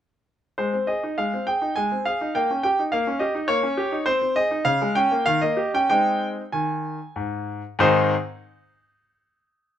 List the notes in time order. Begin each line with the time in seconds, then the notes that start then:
0.58 G#3 C5
0.73 C4
0.87 G#4 D#5
1.03 D#4
1.18 G#3 F5
1.33 C4
1.47 G#4 G5
1.62 D#4
1.76 G#3 G#5
1.92 C4
2.05 G#4 F5
2.21 D#4
2.35 A#3 G5
2.50 C#4
2.63 G4 G5
2.79 D#4
2.92 A#3 F5
3.07 C#4
3.19 G4 D#5
3.35 D#4
3.48 A#3 C#5
3.63 C#4
3.77 G4
3.92 D#4
4.06 C4 C5
4.22 C4
4.36 G#4 D#5
4.51 D#4
4.65 C#3 F5
4.82 G#3
4.95 C#4 G5
5.11 A#3
5.26 D#3 F5
5.42 A#3 D#5
5.57 G4
5.74 C#4 G5
5.90 G#3 C4 D#4 G5
6.52 D#3 G#5
7.16 G#2
7.79 G#2 D#3 C4 D#4 G#4 C5